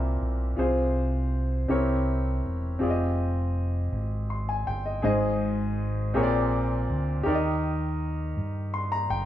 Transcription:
Already playing: C2 A#2 C4 E4 G4 A#4 E5
0.21 B1
0.57 C2 C3 F4 G#4 C5
1.68 C2 C3 C4 E4 G4 A#4 C#5
2.44 E1
2.79 F1 C4 F4 G4 G#4
2.83 D5
2.90 D#5
3.92 G#1
4.30 C6
4.49 G#5
4.67 G1 G5
4.86 D#5
5.02 G#1 G#2 G#4 C5 D#5
6.14 A#1 A#2 C4 G4 G#4 A#4 C#5
6.23 D5
6.89 D2
7.23 D#2 D#3 G4 A#4
7.28 D5
7.35 D#5
8.37 G2
8.74 C6
8.92 A#5
9.10 F#1 G5

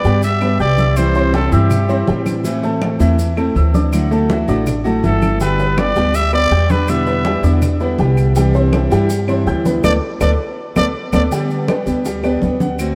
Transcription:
Already playing: D5
0.03 G2 G3 B3 D4 G4 G5, maracas
0.22 E5, muted steel-string acoustic guitar stroke, high conga, maracas
0.40 G3 B3 D4 G4 B4 B5, high conga, claves, maracas
0.59 C2 G3 B3 D4 G4 D5 G5 G6, high conga, maracas
0.78 E4 E5 E6, high conga, maracas
0.96 C3 E3 G3 C4 E4 C5, high conga, claves, maracas
1.14 C4 C5 C6, high conga, maracas
1.33 E3 G3 C4 E4 G4 A4 G5, high conga, maracas
1.51 G2 E3 G3 C4 E4 G4 E5 E6, high conga, maracas
1.70 muted steel-string acoustic guitar stroke, high conga, low conga, claves, maracas
1.88 E3 G3 C4 E4 C5 C6, high conga, maracas
2.07 A2 E3 G3 C4 E4 G4 G5, high conga, maracas
2.26 high conga, claves, maracas
2.43 E3 A3 C4 E4 E5, high conga, maracas
2.63 A3 A4 A5, high conga, maracas
2.81 E3 A3 C4 E4, high conga, claves, maracas
2.99 E2 E3 A3 C4 E4 E5, maracas
3.18 muted steel-string acoustic guitar stroke, high conga, maracas
3.36 A3 C4 E4 A4 A5, high conga, claves, maracas
3.55 D2 E3 A3 C4 E4 E5 E6, high conga, maracas
3.74 D4 D5 D6, high conga, maracas
3.92 D3 F#3 A3 E4 F#4, high conga, claves, maracas
4.11 A3 A4 A5, high conga, maracas
4.29 E3 F#3 A3 E4 F#4 E5, high conga, maracas
4.47 A1 F#3 A3 D4 E4 F#4 D5 D6, high conga, maracas
4.66 muted steel-string acoustic guitar stroke, high conga, low conga, claves, maracas
4.84 F#3 A3 E4 F#4 A4 A5, high conga, maracas
5.03 G1 E3 F#3 A3 E4 F#4 A4 E5, high conga, maracas
5.22 high conga, claves, maracas
5.40 D3 G3 B3 D4 G4 B4 G5, high conga, maracas
5.59 B3 B4 B5, high conga, maracas
5.77 G3 B3 D4 G4 D5, high conga, claves, maracas
5.96 D2 G3 B3 D4 G4 G5, maracas
6.14 E5, muted steel-string acoustic guitar stroke, high conga, maracas
6.32 G3 B3 D4 G4 B4 D5 B5, high conga, claves, maracas
6.51 E2 G3 B3 D4 G4 G5 G6, high conga, maracas
6.69 D4 B4 D5 D6, high conga, maracas
6.88 B2 D3 G3 B3 E4 E5, high conga, claves, maracas
7.06 B3 B4 B5, high conga, maracas
7.25 D3 G3 B3 E4 G4 G5, high conga, maracas
7.43 E2 D3 G3 B3 D4 E4 D5 D6, high conga, maracas
7.62 muted steel-string acoustic guitar stroke, high conga, low conga, claves, maracas
7.80 D3 G3 B3 E4 B4 B5, high conga, maracas
7.98 C2 D3 G3 B3 E4 G4 G5, high conga, maracas
8.17 claves, maracas
8.35 C3 E3 G3 D4 E4 G4 G5, high conga, maracas
8.54 C4 C5 C6, high conga, maracas
8.72 E3 G3 D4 E4, high conga, claves, maracas
8.90 G2 E3 G3 D4 E4 G4 G5, maracas
9.09 muted steel-string acoustic guitar stroke, high conga, maracas
9.27 E3 G3 C4 D4 E4 C5 C6, high conga, claves, maracas
9.46 D2 E3 G3 D4 E4 G4 G5 G6, high conga, maracas
9.65 B3 B4 B5, high conga, maracas
9.84 D2 A3 B3 D4 A4 B4 D5, high conga, claves, maracas
10.21 D2 A3 B3 D4 A4 B4 D5, high conga, claves, maracas
10.76 D2 A3 B3 D4 A4 B4 D5, high conga, claves, maracas
11.12 D2 A3 B3 D4 A4 B4 D5, high conga, claves, maracas
11.31 D3 G3 B3 D4 G4 G5, high conga, maracas
11.50 high conga, maracas
11.67 G3 B3 D4 G4 B4 D5, high conga, claves, maracas
11.86 D2 G3 B3 D4 G4, high conga, maracas
12.05 G3 G4 G5, muted steel-string acoustic guitar stroke, high conga, maracas
12.23 G3 B3 D4 G4 B4 D5, high conga, claves, maracas
12.41 D2 G3 B3 D4 G4, high conga, maracas
12.60 F#5, high conga, maracas
12.78 D3 A3 C4 F#4, high conga, claves, maracas

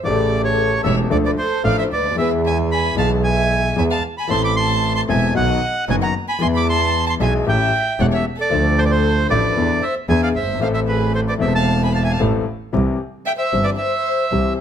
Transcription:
0.03 A1 A2 C#3 E3 A3 G4 A4 D5
0.44 A4 C#5
0.84 E1 E2 E3 A3 C#4 G4 C#5 E5
1.10 D2 D3 F3 A3 D4 A4 D5
1.25 B4 D5
1.38 A4 C5
1.64 A1 A2 F3 A3 D4 A4 D5 F5
1.78 C5 E5
1.91 D2 B4 D5
1.97 C#2
2.04 D2
2.11 D#2
2.15 E2 E3 G#3 B3 E5
2.19 G#4 B4
2.46 E5 G#5
2.72 G#5 B5
2.95 B1 B2 E3 G#3 B3 G#4 F5 A5
3.24 E5 G#5
3.76 E2 E3 G#3 B3 G#4 E5 G#5
3.91 F5 A5
4.18 G#5 B5
4.27 A1 A2 E3 A3 C4 A5 C6
4.31 A4
4.43 B5 D6
4.56 A5 C6
4.95 A5 C6
5.08 E1 E2 E3 A3 C4 A4 E5 G#5
5.35 B1 B2 D#3 F#3 B3 F#4 D#5 F#5
5.88 F#1 F#2 D#3 F#3 B3 F#4 D#5 G#5
6.01 F#5 A#5
6.28 G#5 B5
6.40 E2 E3 G#3 B3 E4 G#5 C6
6.54 B5 D6
6.67 A5 C6
7.07 A5 C6
7.20 B1 B2 E3 G#3 B3 G#4 E5 G#5
7.46 A1 A2 E3 A3 C#4 G4 E5 G5
7.99 E1 E2 E3 A3 C#4 G4 C#5 F#5
8.11 C#5 E5
8.38 A4 D5
8.50 D2 D3 F3 A3 D4
8.54 A4
8.78 A4 C5
8.85 B4 D5
8.90 A4 C5
9.30 A1 A2 F3 A3 D4 A4 B4 D5
9.57 E2 E3 B3 D4 A4
9.83 C5 E5
10.08 E2 E3 B3 D4 G#4 E5 G#5
10.23 D5 F5
10.35 G1 C5 E5
10.42 F#1
10.48 G1
10.55 G#1
10.59 A1 A2 E3 A3 C4 A4 C5 F5
10.74 C5 E5
10.88 G#4 B4
11.15 A4 C5
11.28 B4 D5
11.38 E1 E2 E3 A3 C4 A4 E5
11.43 C5
11.55 F5 A5
11.83 G#5 B5
11.93 F5 A5
12.03 E5 G#5
12.11 F5 A5
12.20 A1 A2 E3 A3 C4 A4
12.73 C2 C3 E3 G3 C4 G4
13.26 E5 G5
13.38 C5 E5
13.53 G1 G2 E3 G3 C4 G4
13.64 B4 D5
13.77 C5 E5
14.32 C2 C3 E3 G3 C4 G4

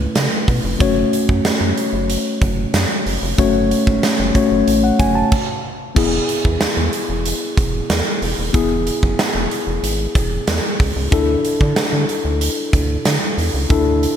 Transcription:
Already playing: A3 C#4 E4 B4
0.16 C#3, snare, closed hi-hat, tambourine
0.48 B2, kick, open hi-hat
0.64 F1
0.79 F#1 A3 C#4 F#4 C#5, kick, closed hi-hat
1.13 closed hi-hat
1.29 F#2, kick
1.45 F#2, snare, closed hi-hat, tambourine
1.61 F#2
1.77 closed hi-hat
1.93 F#1
2.10 closed hi-hat
2.42 F#1, kick, closed hi-hat
2.74 F#2, snare, closed hi-hat, tambourine
3.06 F#1, open hi-hat
3.22 F1
3.38 F#1 A3 C#4 F#4 C#5, kick, closed hi-hat
3.71 closed hi-hat
3.87 G#1, kick
4.03 snare, closed hi-hat, tambourine
4.19 F#1
4.35 A3 C#4 F#4 C#5, kick, closed hi-hat
4.51 F#1
4.68 A1, closed hi-hat
4.84 F#5
4.99 F#1 G#5, kick, closed hi-hat
5.15 A5
5.32 kick, crash
5.95 E1 B3 E4 G#4, kick, crash
6.29 closed hi-hat
6.45 E2, kick
6.60 E2, snare, closed hi-hat, tambourine
6.77 E2
6.93 closed hi-hat
7.09 E1
7.25 closed hi-hat
7.57 E1, kick, closed hi-hat
7.90 E2, snare, closed hi-hat, tambourine
8.22 E1, open hi-hat
8.39 D#1
8.53 E1 B3 E4 G#4, kick, closed hi-hat
8.87 closed hi-hat
9.03 F#1, kick
9.19 snare, closed hi-hat, tambourine
9.35 E1
9.51 closed hi-hat
9.67 E1
9.83 G#1, closed hi-hat
10.15 E1, kick, closed hi-hat
10.47 E2, snare, closed hi-hat, tambourine
10.80 C#2, kick, open hi-hat
10.96 C#2
11.11 D2 D4 E4 A4, kick, closed hi-hat
11.45 closed hi-hat
11.61 D3, kick
11.76 D3, snare, closed hi-hat, tambourine
11.93 D3
12.09 closed hi-hat
12.25 D2
12.41 closed hi-hat
12.73 D2, kick, closed hi-hat
13.05 D3, snare, closed hi-hat, tambourine
13.38 E2, open hi-hat
13.54 C#2
13.69 D2 D4 E4 A4, kick, closed hi-hat
14.03 closed hi-hat

